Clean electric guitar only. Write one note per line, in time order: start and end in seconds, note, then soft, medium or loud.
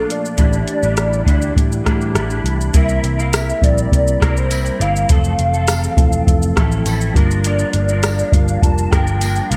0.00 0.37 A3 soft
0.00 0.37 D4 soft
0.00 0.38 F4 soft
0.37 0.82 A2 medium
0.37 0.82 D3 medium
0.37 0.82 G3 medium
0.37 0.82 D4 medium
0.37 0.80 E4 medium
0.82 1.25 G3 soft
0.82 1.26 D4 soft
0.82 1.26 E4 medium
1.25 1.83 D3 medium
1.25 1.85 G3 medium
1.25 1.85 D4 medium
1.25 1.87 E4 medium
1.84 2.13 D3 medium
1.84 2.14 G3 medium
1.84 2.15 D4 medium
1.84 2.16 E4 medium
2.14 2.29 D3 medium
2.14 2.30 G3 medium
2.14 2.29 D4 medium
2.14 2.28 E4 medium
2.29 2.73 G3 soft
2.29 2.74 D4 soft
2.29 2.74 E4 medium
2.73 3.18 C3 medium
2.73 3.18 E3 medium
2.73 3.18 G3 medium
2.73 3.18 C4 medium
2.73 3.17 E4 medium
2.73 3.16 A#4 medium
3.18 4.19 G3 soft
3.18 4.21 C4 soft
3.18 4.22 E4 soft
3.18 4.21 A#4 medium
4.20 4.49 G3 medium
4.20 4.50 C4 medium
4.20 4.50 E4 medium
4.20 4.51 A#4 medium
4.50 4.78 G3 medium
4.50 4.79 C4 medium
4.50 4.80 E4 medium
4.50 4.81 A#4 medium
4.79 5.09 G3 medium
4.79 5.09 C4 medium
4.79 5.10 E4 medium
4.79 5.10 A#4 medium
5.09 5.53 F3 medium
5.09 5.54 A3 medium
5.09 5.54 C4 medium
5.09 5.52 A4 medium
5.54 6.56 C4 medium
5.54 6.57 A4 medium
6.56 6.84 A3 medium
6.56 6.86 C4 medium
6.56 6.87 E4 medium
6.56 6.87 A4 medium
6.86 7.14 A3 medium
6.86 7.16 C4 medium
6.86 7.16 E4 medium
6.86 7.17 A4 medium
7.15 7.45 F3 medium
7.15 7.45 A#3 medium
7.15 7.46 D4 medium
7.15 7.46 A#4 medium
7.45 7.89 G2 medium
7.45 7.89 D3 medium
7.45 7.90 F3 medium
7.45 7.90 A#3 medium
7.45 7.89 D4 medium
7.45 7.88 A#4 loud
7.89 8.91 F3 soft
7.89 8.91 A#3 soft
7.89 8.93 D4 soft
7.89 8.92 A#4 medium
8.91 9.20 F3 medium
8.91 9.21 A#3 medium
8.91 9.22 D4 medium
8.91 9.22 A#4 medium
9.21 9.49 F3 medium
9.21 9.50 A#3 medium
9.21 9.51 D4 medium
9.21 9.51 A#4 medium
9.50 9.57 F3 medium
9.50 9.57 A#3 medium
9.50 9.57 D4 medium
9.50 9.57 A#4 medium